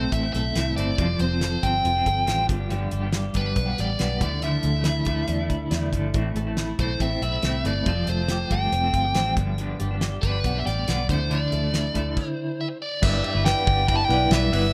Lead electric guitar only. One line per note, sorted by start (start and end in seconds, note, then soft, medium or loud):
0.00 0.13 C5 medium
0.12 0.32 E5 medium
0.33 0.74 E5 medium
0.77 1.21 D5 medium
1.21 1.65 C5 medium
1.63 2.45 G5 medium
3.37 3.80 B4 medium
3.80 4.21 D5 medium
4.22 4.43 D5 medium
4.44 5.89 E5 medium
6.80 7.02 C5 medium
7.01 7.21 E5 medium
7.23 7.66 E5 medium
7.66 8.10 D5 medium
8.09 8.53 C5 medium
8.52 9.33 G5 medium
10.22 10.59 B4 medium
10.58 10.66 E5 medium
10.66 11.06 D5 medium
11.11 11.32 C5 medium
11.31 12.29 D5 medium
12.29 12.78 C5 medium
12.61 12.66 E5 medium
12.82 13.04 D5 medium
13.03 13.43 E5 medium
13.45 13.85 G5 medium
13.89 13.96 G5 loud
13.96 14.03 A5 medium
14.04 14.32 G5 medium
14.32 14.52 E5 medium
14.53 14.73 E5 medium